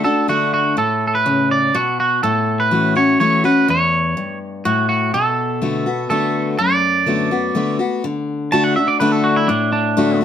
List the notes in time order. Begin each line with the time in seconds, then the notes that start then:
0.04 D4 F#4 A4
0.28 D3 A3 D4 F#4
0.54 F#4
0.77 A2 A4
1.07 A4
1.15 B4
1.26 C#3
1.51 D5
1.75 B2 F#4
2.00 F#4
2.23 A2 A4
2.60 B4
2.71 E3 A3 C#4 F#4
2.95 C#4 F#4 C#5
3.20 E3 A3 C#4 F#4 C#5
3.44 C#4 F#4 B4
3.68 E2 C#5
4.17 G2
4.65 A2 F#4
4.89 F#4
5.14 B2 A4
5.61 D3 A3 B3 F#4
5.86 B3 F#4
6.10 D3 A3 B3 F#4 A4
6.58 F#2 D5
7.06 D3 A3 B3 F#4
7.31 B3 F#4
7.55 D3 A3 B3 F#4
7.79 B3 F#4
8.04 D3
8.52 D3 A3 D4 F#4 A5
8.64 F#5
8.76 D4 F#4 E5
8.88 D5
9.00 D3 A3 D4 F#4 B4
9.12 A4
9.24 F#4
9.36 E4
9.48 A2 D4
9.73 D4
9.97 D3 A3 D4 F#4
10.21 F#4